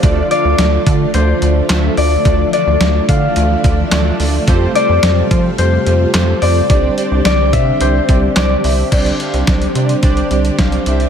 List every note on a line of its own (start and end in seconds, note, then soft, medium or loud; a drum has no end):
0.00 0.23 D2 loud
0.00 4.43 D3 medium
0.00 4.44 F3 medium
0.00 0.28 A3 loud
0.00 6.66 A3 medium
0.00 0.28 D4 loud
0.00 2.23 F4 medium
0.00 0.28 F4 loud
0.00 0.28 A4 loud
0.00 0.28 D5 loud
0.00 0.30 F5 loud
0.00 kick loud
0.00 closed hi-hat medium
0.31 0.56 A3 loud
0.31 0.56 D4 medium
0.31 0.56 F4 medium
0.31 0.56 A4 medium
0.31 1.97 D5 loud
0.31 0.56 F5 loud
0.31 closed hi-hat medium
0.45 0.55 D2 loud
0.58 0.78 D2 loud
0.58 0.83 A3 medium
0.58 0.83 D4 medium
0.58 0.83 F4 medium
0.58 0.83 A4 medium
0.58 0.83 D5 medium
0.58 snare loud
0.58 closed hi-hat medium
0.86 1.06 D3 loud
0.86 1.11 A3 medium
0.86 1.11 D4 medium
0.86 1.11 F4 medium
0.86 1.11 A4 medium
0.86 1.11 D5 medium
0.86 kick loud
0.86 closed hi-hat medium
1.14 1.34 D2 loud
1.14 1.39 A3 medium
1.14 1.39 D4 medium
1.14 1.39 F4 medium
1.14 1.39 A4 medium
1.14 3.12 C5 medium
1.14 1.39 D5 medium
1.14 closed hi-hat medium
1.42 1.61 D2 loud
1.42 1.67 A3 medium
1.42 1.67 D4 medium
1.42 1.67 F4 medium
1.42 1.67 A4 medium
1.42 1.67 D5 medium
1.42 closed hi-hat medium
1.70 1.89 D2 loud
1.70 1.94 A3 loud
1.70 1.94 D4 medium
1.70 1.94 F4 medium
1.70 1.94 A4 medium
1.70 1.94 E5 loud
1.70 snare loud
1.70 clap loud
1.70 closed hi-hat medium
1.97 2.17 D2 loud
1.97 2.22 A3 medium
1.97 2.22 D4 medium
1.97 2.22 F4 medium
1.97 2.22 A4 medium
1.97 2.53 D5 loud
1.97 2.22 D5 medium
1.97 open hi-hat medium
2.25 2.45 D2 loud
2.25 4.45 E3 medium
2.25 2.50 A3 loud
2.25 2.50 D4 medium
2.25 2.50 F4 medium
2.25 2.50 A4 medium
2.25 2.50 D5 loud
2.25 kick loud
2.25 closed hi-hat medium
2.53 2.78 A3 loud
2.53 2.78 D4 medium
2.53 2.78 F4 medium
2.53 2.78 A4 loud
2.53 4.38 D5 loud
2.53 2.78 D5 loud
2.53 closed hi-hat medium
2.67 2.77 D2 loud
2.81 3.00 D2 loud
2.81 3.06 A3 medium
2.81 3.06 D4 medium
2.81 3.06 F4 medium
2.81 3.06 A4 medium
2.81 3.06 D5 medium
2.81 snare loud
2.81 closed hi-hat medium
3.09 3.28 D3 loud
3.09 3.33 A3 medium
3.09 3.33 D4 medium
3.09 3.33 F4 medium
3.09 3.33 A4 medium
3.09 3.33 D5 medium
3.09 4.75 F5 loud
3.09 kick loud
3.09 closed hi-hat medium
3.36 3.56 D2 loud
3.36 3.61 A3 medium
3.36 3.61 D4 medium
3.36 3.61 F4 medium
3.36 3.61 A4 medium
3.36 3.61 D5 medium
3.36 closed hi-hat medium
3.64 3.84 D2 loud
3.64 3.89 A3 medium
3.64 3.89 D4 medium
3.64 3.89 F4 medium
3.64 3.89 A4 medium
3.64 3.89 D5 medium
3.64 kick medium
3.64 closed hi-hat medium
3.92 4.11 D2 loud
3.92 4.17 A3 loud
3.92 4.17 D4 loud
3.92 4.17 F4 loud
3.92 4.17 A4 loud
3.92 4.17 D5 loud
3.92 snare loud
3.92 clap loud
3.92 closed hi-hat medium
4.20 4.39 D2 medium
4.20 4.44 A3 medium
4.20 4.44 D4 medium
4.20 4.44 F4 medium
4.20 4.44 A4 medium
4.20 4.44 D5 loud
4.20 open hi-hat medium
4.47 4.67 F2 loud
4.47 6.67 C3 medium
4.47 8.88 G3 medium
4.47 4.72 C4 loud
4.47 6.67 F4 medium
4.47 4.72 F4 loud
4.47 4.72 G4 loud
4.47 4.72 A4 loud
4.47 4.72 C5 loud
4.47 kick loud
4.47 closed hi-hat medium
4.75 5.00 C4 loud
4.75 5.00 F4 medium
4.75 5.00 G4 loud
4.75 5.00 A4 medium
4.75 5.00 C5 loud
4.75 6.41 D5 loud
4.75 closed hi-hat medium
4.89 4.99 F2 loud
5.03 5.22 F2 loud
5.03 5.28 C4 medium
5.03 5.28 F4 medium
5.03 5.28 G4 medium
5.03 5.28 A4 medium
5.03 5.28 C5 medium
5.03 snare loud
5.03 closed hi-hat medium
5.31 5.50 F3 loud
5.31 5.56 C4 medium
5.31 5.56 F4 medium
5.31 5.56 G4 medium
5.31 5.56 A4 medium
5.31 5.56 C5 medium
5.31 kick loud
5.31 closed hi-hat medium
5.58 5.78 F2 loud
5.58 5.83 C4 medium
5.58 5.83 F4 medium
5.58 5.83 G4 medium
5.58 5.83 A4 medium
5.58 7.56 C5 loud
5.58 5.83 C5 medium
5.58 closed hi-hat medium
5.86 6.06 F2 loud
5.86 6.11 C4 medium
5.86 6.11 F4 medium
5.86 6.11 G4 medium
5.86 6.11 A4 medium
5.86 6.11 C5 medium
5.86 closed hi-hat medium
6.14 6.34 F2 loud
6.14 6.39 C4 loud
6.14 6.39 F4 medium
6.14 6.39 G4 medium
6.14 6.39 A4 medium
6.14 6.39 C5 loud
6.14 snare loud
6.14 clap loud
6.14 closed hi-hat medium
6.42 6.61 F2 loud
6.42 6.67 C4 medium
6.42 6.67 F4 medium
6.42 6.67 G4 medium
6.42 6.67 A4 medium
6.42 6.67 C5 medium
6.42 7.25 D5 loud
6.42 open hi-hat medium
6.70 6.89 C2 loud
6.70 8.90 D3 medium
6.70 8.90 C4 medium
6.70 6.94 C4 loud
6.70 6.94 D4 medium
6.70 8.90 G4 medium
6.70 6.94 G4 medium
6.70 6.94 C5 medium
6.70 6.94 D5 loud
6.70 kick loud
6.70 closed hi-hat medium
6.97 7.22 C4 loud
6.97 7.22 D4 medium
6.97 7.22 G4 medium
6.97 7.22 C5 medium
6.97 7.22 D5 loud
6.97 closed hi-hat medium
7.11 7.21 C2 loud
7.25 7.55 C2 loud
7.25 7.50 C4 medium
7.25 7.50 D4 medium
7.25 7.50 G4 medium
7.25 7.50 C5 medium
7.25 7.50 D5 medium
7.25 8.36 D5 loud
7.25 snare loud
7.25 closed hi-hat medium
7.53 7.73 C3 loud
7.53 7.78 C4 medium
7.53 7.78 D4 medium
7.53 7.78 G4 medium
7.53 7.78 C5 medium
7.53 9.25 E5 loud
7.53 7.78 F5 medium
7.53 kick loud
7.53 closed hi-hat medium
7.81 8.00 C2 loud
7.81 8.05 C4 medium
7.81 8.06 D4 medium
7.81 8.05 G4 medium
7.81 8.05 C5 medium
7.81 9.79 C5 loud
7.81 8.06 D5 medium
7.81 closed hi-hat medium
8.09 8.28 C2 loud
8.09 8.33 C4 medium
8.09 8.33 D4 medium
8.09 8.33 G4 medium
8.09 8.33 C5 medium
8.09 8.33 D5 medium
8.09 kick medium
8.09 closed hi-hat medium
8.36 8.56 C2 loud
8.36 8.61 C4 loud
8.36 8.61 D4 medium
8.36 8.61 G4 medium
8.36 8.61 C5 medium
8.36 8.61 D5 loud
8.36 10.21 D5 medium
8.36 snare loud
8.36 clap loud
8.36 closed hi-hat medium
8.64 8.84 C2 loud
8.64 8.89 C4 medium
8.64 8.89 D4 medium
8.64 8.89 G4 medium
8.64 8.89 C5 medium
8.64 8.89 E5 medium
8.64 open hi-hat medium
8.92 9.11 C2 loud
8.92 11.09 D3 medium
8.92 11.09 G3 medium
8.92 11.09 C4 medium
8.92 9.17 D4 loud
8.92 9.17 G4 loud
8.92 11.09 G4 medium
8.92 9.17 C5 loud
8.92 9.17 D5 loud
8.92 kick loud
8.92 closed hi-hat medium
8.92 crash medium
9.06 closed hi-hat medium
9.20 9.44 D4 medium
9.20 9.44 G4 medium
9.20 9.44 C5 medium
9.20 9.44 F5 loud
9.20 closed hi-hat medium
9.34 9.43 C2 medium
9.34 closed hi-hat medium
9.47 9.67 C2 loud
9.47 9.72 D4 medium
9.47 9.72 G4 medium
9.47 9.72 C5 medium
9.47 9.72 D5 loud
9.47 kick loud
9.47 snare loud
9.47 closed hi-hat medium
9.62 closed hi-hat medium
9.75 9.95 C3 loud
9.75 10.00 D4 medium
9.75 10.00 G4 medium
9.75 10.00 C5 medium
9.75 10.00 D5 loud
9.75 closed hi-hat medium
9.89 closed hi-hat medium
10.03 10.22 C2 loud
10.03 10.28 D4 loud
10.03 10.28 G4 loud
10.03 10.28 C5 loud
10.03 10.28 D5 loud
10.03 kick loud
10.03 closed hi-hat medium
10.17 closed hi-hat soft
10.31 10.50 C2 loud
10.31 10.56 D4 medium
10.31 10.56 G4 medium
10.31 10.55 C5 medium
10.31 10.55 D5 loud
10.31 closed hi-hat medium
10.45 closed hi-hat medium
10.59 10.78 C2 loud
10.59 10.83 D4 medium
10.59 10.83 G4 medium
10.59 10.83 C5 medium
10.59 10.83 F5 loud
10.59 kick loud
10.59 snare loud
10.59 closed hi-hat medium
10.72 closed hi-hat medium
10.86 11.06 C2 loud
10.86 11.09 D4 medium
10.86 11.09 G4 medium
10.86 11.09 C5 medium
10.86 11.09 E5 loud
10.86 closed hi-hat medium
11.00 closed hi-hat soft